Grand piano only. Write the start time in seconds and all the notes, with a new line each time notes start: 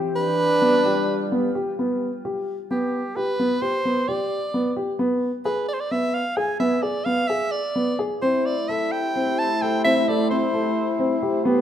Already playing: G4
0.62 B3
0.85 G4
1.32 B3
1.55 G4
1.79 B3
2.25 G4
2.71 B3
3.16 G4
3.39 B3
3.62 G4
3.85 B3
4.08 G4
4.54 B3
4.77 G4
4.99 B3
5.45 G#4
5.91 B3
6.37 G#4
6.60 B3
6.83 G#4
7.06 B3
7.30 G#4
7.76 B3
7.99 G#4
8.22 C4
8.69 A4
9.16 C4
9.62 A4
9.85 C4
10.08 A4
10.31 C4
10.54 A4
10.99 C4
11.22 G4
11.45 B3